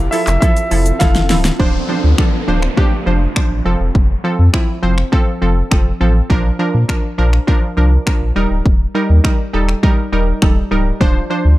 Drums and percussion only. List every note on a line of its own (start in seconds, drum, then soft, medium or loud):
0.12 open hi-hat medium
0.12 shaker medium
0.27 clap medium
0.27 closed hi-hat soft
0.27 shaker medium
0.42 kick loud
0.42 closed hi-hat medium
0.42 shaker medium
0.57 closed hi-hat medium
0.57 shaker medium
0.71 open hi-hat medium
0.71 shaker soft
0.86 closed hi-hat medium
0.86 shaker medium
1.01 kick loud
1.01 snare medium
1.01 closed hi-hat medium
1.01 shaker medium
1.16 snare medium
1.16 closed hi-hat soft
1.16 shaker soft
1.30 snare medium
1.30 open hi-hat medium
1.30 shaker medium
1.45 snare loud
1.45 closed hi-hat medium
1.45 shaker medium
1.60 kick loud
2.18 finger snap loud
2.18 kick loud
2.62 finger snap medium
2.77 kick loud
3.36 finger snap loud
3.36 kick loud
3.95 kick loud
4.54 finger snap loud
4.54 kick loud
4.98 finger snap medium
5.13 kick loud
5.71 finger snap loud
5.71 kick loud
6.30 kick loud
6.89 finger snap loud
6.89 kick loud
7.33 finger snap medium
7.48 kick loud
8.07 finger snap loud
8.07 kick loud
8.66 kick loud
9.24 finger snap loud
9.24 kick loud
9.69 finger snap medium
9.83 kick loud
10.42 finger snap loud
10.42 kick loud
11.01 kick loud